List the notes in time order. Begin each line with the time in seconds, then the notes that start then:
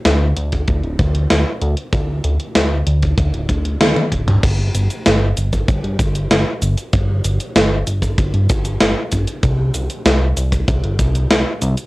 0.05 D2, snare, closed hi-hat
0.37 D2, closed hi-hat
0.52 kick, closed hi-hat
0.68 D2, kick, closed hi-hat
0.84 D1, closed hi-hat
0.99 D2, kick, closed hi-hat
1.15 closed hi-hat
1.30 D2, snare, closed hi-hat
1.62 D2, closed hi-hat
1.77 closed hi-hat
1.93 D2, kick, closed hi-hat
2.24 D2, closed hi-hat
2.40 closed hi-hat
2.55 D2, snare, closed hi-hat
2.87 D2, closed hi-hat
3.03 kick, closed hi-hat
3.18 D2, kick, closed hi-hat
3.34 D1, closed hi-hat
3.49 D2, kick, closed hi-hat
3.65 closed hi-hat
3.81 D2, snare, closed hi-hat, high tom
3.96 closed hi-hat, high tom
4.12 D1, kick, closed hi-hat
4.28 closed hi-hat, mid tom
4.43 G1, kick, closed hi-hat, crash, cabasa
4.74 G1, closed hi-hat, cabasa
4.90 closed hi-hat, cabasa
5.06 G1, snare, closed hi-hat, cabasa
5.37 G1, closed hi-hat, cabasa
5.53 kick, closed hi-hat, cabasa
5.68 G1, kick, closed hi-hat, cabasa
5.84 G2, closed hi-hat
5.99 G1, kick, closed hi-hat, cabasa
6.15 closed hi-hat, cabasa
6.31 G1, snare, closed hi-hat, cabasa
6.62 G1, closed hi-hat, cabasa
6.78 closed hi-hat, cabasa
6.93 G1, kick, closed hi-hat, cabasa
7.24 G1, closed hi-hat, cabasa
7.40 closed hi-hat, cabasa
7.56 G1, snare, closed hi-hat, cabasa
7.87 G1, closed hi-hat, cabasa
8.02 kick, closed hi-hat, cabasa
8.18 G1, kick, closed hi-hat, cabasa
8.34 G2, closed hi-hat
8.49 G1, kick, closed hi-hat, cabasa
8.65 closed hi-hat, cabasa
8.81 G1, snare, closed hi-hat, cabasa
9.12 G1, kick, closed hi-hat, cabasa
9.28 closed hi-hat, cabasa
9.43 C2, kick, closed hi-hat, cabasa
9.74 C2, closed hi-hat, cabasa
9.90 closed hi-hat, cabasa
10.06 C2, snare, closed hi-hat, cabasa
10.37 C2, closed hi-hat, cabasa
10.52 kick, closed hi-hat, cabasa
10.68 C2, kick, closed hi-hat, cabasa
10.84 G1, closed hi-hat
10.99 C2, kick, closed hi-hat, cabasa
11.15 closed hi-hat, cabasa
11.30 C2, snare, closed hi-hat, cabasa
11.62 C2, closed hi-hat, cabasa
11.77 closed hi-hat, cabasa